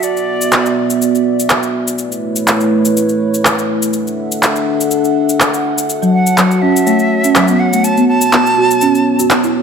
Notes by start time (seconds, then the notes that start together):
Already playing: F#4 E5
0.03 B3 D5, cabasa
0.17 cabasa
0.41 cabasa
0.52 clap, cabasa
0.66 cabasa
0.90 cabasa
1.02 cabasa
1.15 cabasa
1.40 cabasa
1.49 clap, cabasa
1.63 cabasa
1.88 cabasa
1.98 A3 E4 B4 C#5, cabasa
2.12 cabasa
2.36 cabasa
2.47 clap, cabasa
2.60 cabasa
2.85 cabasa
2.97 cabasa
3.09 cabasa
3.34 cabasa
3.45 clap, cabasa
3.59 cabasa
3.82 cabasa
3.93 D4 A4 E5 F#5, cabasa
4.07 cabasa
4.32 cabasa
4.43 clap, cabasa
4.56 cabasa
4.81 cabasa
4.91 cabasa
5.04 cabasa
5.29 cabasa
5.40 clap, cabasa
5.54 cabasa
5.78 cabasa
5.89 F#4 C#5 A5, cabasa
6.02 F#3, cabasa
6.14 F#5
6.26 cabasa
6.38 F#3, clap, cabasa
6.51 cabasa
6.62 C#4 E5
6.76 cabasa
6.87 A3, cabasa
6.99 cabasa
7.24 C#4, cabasa
7.35 F#3, clap, cabasa
7.48 B3, cabasa
7.60 F#5
7.73 A3, cabasa
7.84 B3 F#4 A5, cabasa
7.97 B3, cabasa
8.08 A5
8.21 cabasa
8.32 B3, clap, cabasa
8.46 cabasa
8.58 F#4
8.71 cabasa
8.81 C#4, cabasa
8.95 cabasa
9.19 F#4, cabasa
9.30 B3, clap, cabasa
9.44 E4, cabasa